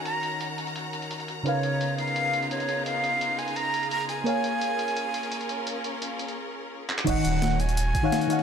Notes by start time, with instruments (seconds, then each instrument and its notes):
Already playing: string section D#3 C#4 F#4 F#5 A#5, fm electric piano D#3 D#4 F#4 C#5 F#5
0.05 flute A#5, closed hi-hat
0.23 closed hi-hat
0.41 closed hi-hat
0.58 closed hi-hat
0.67 closed hi-hat
0.76 closed hi-hat
0.93 closed hi-hat
1.02 closed hi-hat
1.11 closed hi-hat
1.20 closed hi-hat
1.28 closed hi-hat
1.43 fm electric piano C#3 C#4 D#4 A#4, string section C#3 B3 D#4 F4 G#4, flute C#5, closed hi-hat
1.47 fm electric piano B4 F5
1.63 closed hi-hat
1.81 closed hi-hat
1.98 flute F5, closed hi-hat
2.07 closed hi-hat
2.16 closed hi-hat
2.34 closed hi-hat
2.43 closed hi-hat
2.51 flute C#5, closed hi-hat
2.60 closed hi-hat
2.69 closed hi-hat
2.86 flute F5, closed hi-hat
3.04 closed hi-hat
3.21 closed hi-hat
3.39 flute G#5, closed hi-hat
3.48 closed hi-hat
3.56 flute A#5, closed hi-hat
3.74 closed hi-hat
3.83 closed hi-hat
3.91 flute A#5, closed hi-hat
4.00 closed hi-hat
4.09 flute G#5, closed hi-hat
4.24 fm electric piano A#3 A#4 C#5 F5, string section C#4 A#4, closed hi-hat
4.29 fm electric piano G#5
4.44 closed hi-hat
4.61 closed hi-hat
4.79 closed hi-hat
4.88 closed hi-hat
4.97 closed hi-hat
5.14 closed hi-hat
5.23 closed hi-hat
5.32 closed hi-hat
5.41 closed hi-hat
5.49 closed hi-hat
5.67 closed hi-hat
5.84 closed hi-hat
6.02 closed hi-hat
6.19 closed hi-hat
6.28 closed hi-hat
6.90 clap
6.99 clap
7.05 sub bass D#1, fm electric piano D#3 D#4 C#5 D#5, string section C#4 F#4 C#5, flute F#5, kick, closed hi-hat, crash
7.10 fm electric piano F#5
7.25 sub bass D#1, closed hi-hat
7.42 snare, closed hi-hat
7.60 flute G#5, closed hi-hat
7.69 closed hi-hat
7.77 closed hi-hat
7.95 kick, closed hi-hat
8.03 fm electric piano D#3 D#4 C#5 F5 F#5
8.12 snare, closed hi-hat
8.21 closed hi-hat
8.28 fm electric piano D#3 D#4 C#5 F5, snare, closed hi-hat
8.33 fm electric piano F#5
8.39 snare